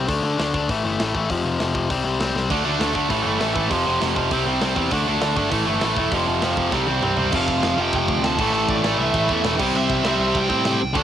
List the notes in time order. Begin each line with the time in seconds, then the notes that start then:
0.08 D2 D3 A3 D4, kick, open hi-hat
0.23 D2 D3 A3 D4
0.38 D2 D3 A3 D4, snare, open hi-hat
0.54 D2 D3 A3 D4, kick
0.69 A1 A2 E3 A3, kick, open hi-hat
0.84 G1 A2 E3 A3
1.00 A1 A2 E3 A3, snare, open hi-hat
1.15 A1 A2 E3 A3, kick
1.30 F1 F2 C3 F3, kick, open hi-hat
1.45 F1 F2 C3 F3
1.59 F1 F2 C3 F3, snare, open hi-hat
1.74 F1 F2 C3 F3, kick
1.90 C2 C3 G3 C4, kick, open hi-hat
2.04 C2 C3 G3 C4
2.20 C2 C3 G3 C4, snare, open hi-hat
2.35 C2 C3 G3 C4, snare
2.50 D2 D3 A3 D4, kick, crash
2.64 D2 D3 A3 D4
2.79 D2 D3 A3 D4, snare, open hi-hat
2.93 D2 D3 A3 D4, kick
3.09 A1 A2 E3 A3, kick, open hi-hat
3.22 G1 A2 E3 A3
3.40 A1 A2 E3 A3, snare, open hi-hat
3.54 A1 A2 E3 A3, kick
3.70 F1 F2 C3 F3, kick, open hi-hat
3.86 F1 F2 C3 F3
4.00 F1 F2 C3 F3, snare, open hi-hat
4.16 F1 F2 C3 F3, kick
4.31 C2 C3 G3 C4, kick, open hi-hat
4.45 C2 C3 G3 C4
4.61 C2 C3 G3 C4, snare, open hi-hat
4.76 E2 C3 G3 C4, kick
4.91 D2 D3 A3 D4, kick, open hi-hat
5.07 D2 D3 A3 D4
5.21 D2 D3 A3 D4, snare, open hi-hat
5.37 G1 D3 A3 D4, kick
5.51 A1 A2 E3 A3, kick, open hi-hat
5.67 G1 A2 E3 A3
5.81 A1 A2 E3 A3, snare, open hi-hat
5.96 E1 A2 E3 A3, kick
6.11 F1 F2 C3 F3, kick, open hi-hat
6.26 F1 F2 C3 F3
6.42 F1 F2 C3 F3, snare, open hi-hat
6.57 F1 F2 C3 F3, kick
6.72 C2 C3 G3 C4, kick, snare
6.87 C2 C3 G3 C4, high tom
7.02 C2 C3 G3 C4, mid tom
7.17 C2 C3 G3 C4, floor tom
7.31 F1 F2 C3, kick, crash
7.35 F3 F5
7.47 F1, kick
7.62 F1, snare, crash
7.76 F1 C3 F3
7.80 F2 G5
7.93 F1 G5, kick, crash
8.08 D2, kick
8.22 D2 F2 C3 A5, snare, crash
8.27 F3
8.37 A1 A2 E3, kick, crash
8.41 A3
8.53 A1 A5, crash
8.68 A1 D5, kick
8.83 A1 A2 E3 A3, snare, crash
8.98 C2 E5
9.13 A1, kick, crash
9.28 E2 A2 E3 A3, kick
9.44 E1, snare, crash
9.58 C2 C3 G3, kick, crash
9.62 C4
9.74 C2 E5, crash
9.89 C2, kick
10.03 C2 C3 G3 C4 E5, snare, crash
10.19 C2
10.35 C2 G5, kick, crash
10.49 A2 C3 G3 C4, kick
10.65 A2 G5, snare, crash
10.82 C2
10.93 D2 D3 A3 D4 A5, kick, crash